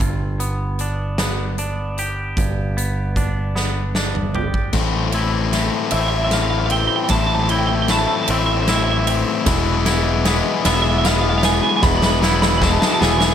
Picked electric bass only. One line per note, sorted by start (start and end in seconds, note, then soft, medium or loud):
0.00 2.33 G1 medium
2.37 4.70 G1 medium
4.74 5.69 A1 medium
5.93 6.87 A1 medium
7.10 8.05 A1 medium
8.29 9.23 A1 medium
9.46 10.41 E1 loud
10.66 11.60 E1 medium
11.83 12.77 E1 loud
13.02 13.34 E1 medium